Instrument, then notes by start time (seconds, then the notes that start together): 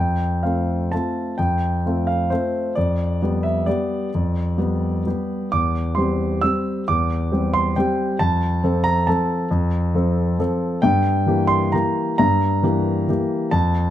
grand piano
Already playing: F2 G5
0.43 A3 C4 F4 F5
0.92 A3 C4 F4 A5
1.38 F2 G5
1.86 A3 C4 F4
2.07 F5
2.30 A3 C4 F4 C5
2.75 F2 D5
3.22 G3 B3 G4
3.43 E5
3.66 G3 B3 G4 D5
4.15 F2
4.58 G3 B3 G4
5.06 G3 B3 G4
5.52 E2 D6
5.95 G3 C4 G4 C6
6.41 G3 C4 G4 E6
6.88 E2 D6
7.32 G3 C4 G4
7.54 C6
7.76 G3 C4 G4 G5
8.19 F2 A5
8.64 F3 C4 A4
8.84 A#5
9.07 F3 C4 A4 A5
9.51 F2
9.94 F3 C4 A4
10.39 F3 C4 A4
10.82 G2 G5
11.26 E3 A#3 G4
11.47 C6
11.72 E3 A#3 G4 A#5
12.18 G2 A#5
12.63 E3 A#3 G4
13.08 E3 A#3 G4
13.51 F2 A5